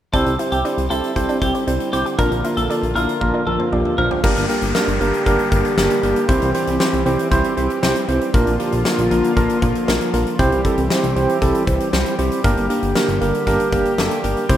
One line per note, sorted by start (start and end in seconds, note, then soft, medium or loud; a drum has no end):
0.13 0.25 C2 loud
0.13 4.20 D3 medium
0.13 2.17 G3 medium
0.13 0.34 C4 loud
0.13 2.17 C4 medium
0.13 0.29 D4 medium
0.13 0.34 E4 medium
0.13 2.17 E4 medium
0.13 0.34 G4 medium
0.13 0.35 A4 medium
0.13 0.34 C5 loud
0.13 kick loud
0.13 closed hi-hat medium
0.26 0.38 C2 loud
0.26 closed hi-hat soft
0.39 0.60 C4 medium
0.39 0.55 E4 medium
0.39 0.60 E4 medium
0.39 0.60 G4 medium
0.39 0.60 C5 medium
0.39 closed hi-hat medium
0.52 0.63 C2 medium
0.52 0.63 G4 medium
0.52 closed hi-hat medium
0.65 0.86 C4 medium
0.65 0.80 D4 medium
0.65 0.86 E4 medium
0.65 0.86 G4 medium
0.65 0.86 C5 medium
0.65 closed hi-hat medium
0.78 0.89 C2 loud
0.78 closed hi-hat medium
0.90 1.02 C2 medium
0.90 1.11 C4 medium
0.90 1.06 E4 medium
0.90 1.11 E4 medium
0.90 1.11 G4 medium
0.90 1.27 A4 medium
0.90 1.11 C5 medium
0.90 closed hi-hat medium
1.04 closed hi-hat soft
1.16 1.27 C2 loud
1.16 1.37 C4 loud
1.16 1.37 E4 medium
1.16 1.37 G4 medium
1.16 1.37 C5 loud
1.16 kick medium
1.16 closed hi-hat medium
1.29 1.44 D4 medium
1.29 closed hi-hat soft
1.42 1.53 C2 loud
1.42 1.63 C4 medium
1.42 1.63 E4 medium
1.42 1.63 G4 medium
1.42 1.52 G4 medium
1.42 1.63 C5 medium
1.42 kick medium
1.42 closed hi-hat medium
1.55 1.62 C4 medium
1.55 closed hi-hat soft
1.67 1.79 C2 loud
1.67 1.88 C4 medium
1.67 1.83 D4 medium
1.67 1.88 E4 medium
1.67 1.88 G4 medium
1.67 1.88 C5 medium
1.67 closed hi-hat medium
1.80 closed hi-hat medium
1.93 2.04 C2 medium
1.93 2.14 C4 medium
1.93 2.14 E4 medium
1.93 2.14 G4 medium
1.93 2.04 G4 medium
1.93 2.14 C5 medium
1.93 closed hi-hat medium
2.06 2.13 G4 medium
2.06 closed hi-hat soft
2.18 2.30 A#1 loud
2.18 4.22 F3 medium
2.18 2.39 A#3 loud
2.18 4.22 A#3 medium
2.18 2.39 D4 medium
2.18 2.34 D4 medium
2.18 2.39 F4 loud
2.18 4.22 F4 medium
2.18 2.39 A#4 loud
2.18 2.40 A#4 medium
2.18 kick loud
2.18 closed hi-hat medium
2.32 2.43 A#1 medium
2.32 closed hi-hat soft
2.44 2.65 A#3 medium
2.44 2.65 D4 medium
2.44 2.60 E4 medium
2.44 2.65 F4 medium
2.44 2.65 A#4 medium
2.44 closed hi-hat medium
2.57 2.68 A#1 loud
2.57 2.68 A4 medium
2.57 closed hi-hat medium
2.70 2.91 A#3 medium
2.70 2.91 D4 medium
2.70 2.85 D4 medium
2.70 2.91 F4 medium
2.70 2.91 A4 medium
2.70 closed hi-hat medium
2.83 2.94 A#1 loud
2.83 closed hi-hat soft
2.95 3.07 A#1 loud
2.95 3.16 A#3 medium
2.95 3.16 D4 medium
2.95 3.11 E4 medium
2.95 3.16 F4 medium
2.95 3.16 A#4 medium
2.95 3.32 A#4 medium
2.95 closed hi-hat medium
3.09 closed hi-hat soft
3.21 3.33 A#1 loud
3.21 3.42 A#3 loud
3.21 3.42 D4 medium
3.21 3.42 F4 medium
3.21 3.42 A#4 loud
3.21 kick medium
3.21 high tom medium
3.34 3.49 D4 medium
3.34 high tom soft
3.47 3.58 A#1 medium
3.47 3.68 A#3 medium
3.47 3.68 D4 medium
3.47 3.68 F4 medium
3.47 3.57 A4 medium
3.47 3.68 A#4 medium
3.47 mid tom medium
3.60 3.67 C4 medium
3.60 mid tom medium
3.72 3.84 A#1 loud
3.72 3.93 A#3 medium
3.72 3.93 D4 medium
3.72 3.88 D4 medium
3.72 3.93 F4 medium
3.72 3.93 G4 medium
3.72 mid tom medium
3.85 mid tom medium
3.98 4.09 A#1 loud
3.98 4.19 A#3 medium
3.98 4.19 D4 medium
3.98 4.19 F4 medium
3.98 4.09 A#4 medium
3.98 4.19 C5 medium
3.98 floor tom medium
4.11 4.19 G4 medium
4.11 floor tom medium
4.24 4.35 G1 loud
4.24 6.27 D3 medium
4.24 8.30 G3 medium
4.24 4.45 A#3 loud
4.24 6.27 A#3 medium
4.24 4.45 D4 loud
4.24 4.45 G4 loud
4.24 8.30 G4 medium
4.24 4.45 A#4 loud
4.24 kick loud
4.24 crash medium
4.24 downlifter medium
4.37 4.48 G1 medium
4.37 closed hi-hat medium
4.49 4.70 A#3 medium
4.49 4.70 D4 medium
4.49 4.70 G4 medium
4.49 4.70 A#4 medium
4.49 closed hi-hat medium
4.62 4.73 G1 loud
4.62 closed hi-hat medium
4.75 4.96 A#3 medium
4.75 4.96 D4 medium
4.75 4.96 G4 medium
4.75 4.96 A#4 loud
4.75 snare loud
4.88 4.99 G1 loud
4.88 closed hi-hat medium
5.01 5.12 G1 loud
5.01 5.22 A#3 medium
5.01 5.22 D4 medium
5.01 5.22 G4 medium
5.01 5.22 A#4 loud
5.01 closed hi-hat medium
5.14 closed hi-hat medium
5.26 5.38 G1 loud
5.26 5.47 A#3 loud
5.26 5.47 D4 loud
5.26 5.47 G4 loud
5.26 5.47 A#4 loud
5.26 kick medium
5.26 closed hi-hat medium
5.39 closed hi-hat medium
5.52 5.63 G1 medium
5.52 5.73 A#3 medium
5.52 5.73 D4 medium
5.52 5.73 G4 medium
5.52 5.73 A#4 medium
5.52 kick loud
5.52 closed hi-hat medium
5.65 closed hi-hat soft
5.77 5.89 G1 medium
5.77 5.98 A#3 medium
5.77 5.98 D4 medium
5.77 5.98 G4 medium
5.77 5.98 A#4 loud
5.77 snare loud
5.90 closed hi-hat medium
6.03 6.14 G1 loud
6.03 6.24 A#3 medium
6.03 6.24 D4 medium
6.03 6.24 G4 medium
6.03 6.24 A#4 medium
6.03 closed hi-hat medium
6.16 closed hi-hat medium
6.29 6.40 C2 loud
6.29 8.32 E3 medium
6.29 6.50 C4 loud
6.29 8.32 C4 medium
6.29 6.50 E4 loud
6.29 6.50 G4 loud
6.29 6.50 C5 loud
6.29 kick loud
6.29 closed hi-hat medium
6.42 6.53 C2 loud
6.42 closed hi-hat medium
6.54 6.75 C4 medium
6.54 6.75 E4 medium
6.54 6.75 G4 medium
6.54 6.75 C5 medium
6.54 closed hi-hat medium
6.67 6.79 C2 loud
6.67 closed hi-hat medium
6.80 7.01 C4 medium
6.80 7.01 E4 medium
6.80 7.01 G4 medium
6.80 7.01 C5 loud
6.80 snare loud
6.93 7.04 C2 loud
6.93 closed hi-hat medium
7.06 7.17 C2 loud
7.06 7.27 C4 medium
7.06 7.27 E4 medium
7.06 7.27 G4 medium
7.06 7.27 C5 loud
7.06 closed hi-hat medium
7.19 closed hi-hat medium
7.31 7.43 C2 loud
7.31 7.52 C4 loud
7.31 7.52 E4 loud
7.31 7.52 G4 loud
7.31 7.52 C5 loud
7.31 kick medium
7.31 closed hi-hat medium
7.44 closed hi-hat medium
7.57 7.68 C2 loud
7.57 7.78 C4 medium
7.57 7.78 E4 medium
7.57 7.78 G4 medium
7.57 7.78 C5 medium
7.57 closed hi-hat medium
7.70 closed hi-hat soft
7.83 7.94 C2 loud
7.83 8.04 C4 medium
7.83 8.04 E4 medium
7.83 8.04 G4 medium
7.83 8.04 C5 loud
7.83 snare loud
7.96 closed hi-hat medium
8.08 8.20 C2 medium
8.08 8.29 C4 medium
8.08 8.29 E4 medium
8.08 8.29 G4 medium
8.08 8.29 C5 medium
8.08 closed hi-hat medium
8.21 closed hi-hat medium
8.34 8.45 A#1 loud
8.34 10.37 D3 medium
8.34 10.37 F3 medium
8.34 10.37 A#3 medium
8.34 8.55 A#3 loud
8.34 8.55 D4 loud
8.34 10.37 F4 medium
8.34 8.55 F4 loud
8.34 8.55 A#4 loud
8.34 kick loud
8.34 closed hi-hat medium
8.47 8.58 A#1 loud
8.47 closed hi-hat soft
8.60 8.81 A#3 medium
8.60 8.81 D4 medium
8.60 8.81 F4 medium
8.60 8.81 G4 medium
8.60 closed hi-hat medium
8.72 8.84 A#1 loud
8.72 closed hi-hat medium
8.85 9.06 A#3 medium
8.85 9.06 D4 medium
8.85 9.06 F4 medium
8.85 9.06 A#4 loud
8.85 snare loud
8.98 9.09 A#1 loud
8.98 closed hi-hat medium
9.11 9.22 A#1 loud
9.11 9.32 A#3 medium
9.11 9.32 D4 medium
9.11 9.32 F4 medium
9.11 9.32 A#4 loud
9.11 closed hi-hat medium
9.24 closed hi-hat medium
9.37 9.48 A#1 loud
9.37 9.57 A#3 loud
9.37 9.57 D4 loud
9.37 9.57 F4 loud
9.37 9.57 A#4 loud
9.37 kick medium
9.37 closed hi-hat medium
9.49 closed hi-hat medium
9.62 9.73 A#1 loud
9.62 9.83 A#3 medium
9.62 9.83 D4 medium
9.62 9.83 F4 medium
9.62 9.83 A#4 medium
9.62 kick loud
9.62 closed hi-hat medium
9.75 closed hi-hat medium
9.88 9.99 A#1 loud
9.88 10.09 A#3 medium
9.88 10.09 D4 medium
9.88 10.09 F4 medium
9.88 10.09 A#4 medium
9.88 snare loud
10.01 closed hi-hat medium
10.14 10.25 A#1 loud
10.14 10.34 A#3 medium
10.14 10.34 D4 medium
10.14 10.34 F4 medium
10.14 10.34 A#4 medium
10.14 closed hi-hat medium
10.26 closed hi-hat medium
10.39 10.50 C2 loud
10.39 12.42 E3 medium
10.39 14.45 G3 medium
10.39 12.42 C4 medium
10.39 10.60 C4 loud
10.39 10.60 E4 loud
10.39 14.57 G4 medium
10.39 10.60 G4 loud
10.39 10.60 C5 loud
10.39 kick loud
10.39 closed hi-hat medium
10.52 10.63 C2 loud
10.52 closed hi-hat soft
10.65 10.86 C4 medium
10.65 10.86 E4 medium
10.65 10.86 G4 medium
10.65 10.86 A4 medium
10.65 kick medium
10.65 closed hi-hat medium
10.78 10.89 C2 loud
10.78 closed hi-hat medium
10.90 11.11 C4 medium
10.90 11.11 E4 medium
10.90 11.11 G4 medium
10.90 11.11 C5 loud
10.90 snare loud
11.03 11.15 C2 loud
11.03 closed hi-hat medium
11.16 11.27 C2 loud
11.16 11.37 C4 medium
11.16 11.37 E4 medium
11.16 11.37 G4 medium
11.16 11.37 C5 loud
11.16 closed hi-hat medium
11.29 closed hi-hat medium
11.42 11.53 C2 loud
11.42 11.63 C4 loud
11.42 11.63 E4 medium
11.42 11.63 G4 loud
11.42 11.63 A4 loud
11.42 kick medium
11.42 closed hi-hat medium
11.55 closed hi-hat medium
11.67 11.79 C2 loud
11.67 11.88 C4 medium
11.67 11.88 E4 medium
11.67 11.88 G4 medium
11.67 11.88 C5 medium
11.67 kick loud
11.67 closed hi-hat medium
11.80 closed hi-hat soft
11.93 12.04 C2 loud
11.93 12.14 C4 medium
11.93 12.14 E4 medium
11.93 12.14 G4 medium
11.93 12.14 C5 loud
11.93 snare loud
12.06 closed hi-hat medium
12.19 12.30 C2 loud
12.19 12.39 C4 medium
12.19 12.39 E4 medium
12.19 12.39 G4 medium
12.19 12.39 C5 medium
12.19 closed hi-hat medium
12.32 closed hi-hat medium
12.44 12.56 G1 loud
12.44 14.47 D3 medium
12.44 12.65 A#3 loud
12.44 14.47 A#3 medium
12.44 12.65 D4 loud
12.44 12.65 G4 loud
12.44 12.65 A#4 loud
12.44 kick loud
12.44 closed hi-hat medium
12.57 12.68 G1 loud
12.57 closed hi-hat soft
12.70 12.91 A#3 medium
12.70 12.91 D4 medium
12.70 12.91 G4 medium
12.70 12.91 A#4 medium
12.70 closed hi-hat medium
12.83 12.94 G1 loud
12.83 closed hi-hat medium
12.95 13.16 A#3 medium
12.95 13.16 D4 medium
12.95 13.16 G4 medium
12.95 13.16 A#4 loud
12.95 snare loud
13.08 13.20 G1 loud
13.08 closed hi-hat medium
13.21 13.32 G1 loud
13.21 13.42 A#3 medium
13.21 13.42 D4 medium
13.21 13.42 G4 medium
13.21 13.42 A#4 medium
13.21 closed hi-hat medium
13.34 closed hi-hat medium
13.47 13.58 G1 loud
13.47 13.68 A#3 loud
13.47 13.68 D4 loud
13.47 13.68 G4 loud
13.47 13.68 A#4 loud
13.47 kick medium
13.47 closed hi-hat medium
13.60 closed hi-hat medium
13.72 13.84 G1 medium
13.72 13.93 A#3 medium
13.72 13.93 D4 medium
13.72 13.93 G4 medium
13.72 13.93 A#4 medium
13.72 kick loud
13.72 closed hi-hat medium
13.85 closed hi-hat medium
13.98 14.09 G1 medium
13.98 14.19 A#3 medium
13.98 14.19 D4 medium
13.98 14.19 G4 medium
13.98 14.19 A4 medium
13.98 snare loud
14.11 closed hi-hat medium
14.24 14.35 G1 loud
14.24 14.45 A#3 medium
14.24 14.45 D4 medium
14.24 14.45 G4 medium
14.24 14.45 A#4 medium
14.24 closed hi-hat medium
14.37 closed hi-hat medium
14.49 14.57 C2 loud
14.49 14.57 E3 medium
14.49 14.57 G3 medium
14.49 14.57 C4 loud
14.49 14.57 C4 medium
14.49 14.57 E4 loud
14.49 14.57 G4 loud
14.49 14.57 C5 loud
14.49 kick loud
14.49 closed hi-hat medium